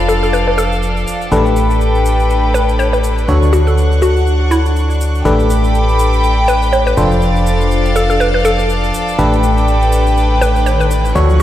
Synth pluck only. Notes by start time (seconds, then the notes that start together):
0.09 A4
0.23 A4
0.33 B4
0.47 B4
0.58 A4
2.54 B4
2.79 C#5
2.93 B4
3.53 F#4
3.67 A4
4.02 F#4
4.51 E4
6.48 B4
6.73 C#5
6.87 B4
7.96 A4
8.10 A4
8.20 B4
8.34 B4
8.45 A4
10.41 B4
10.66 C#5
10.80 B4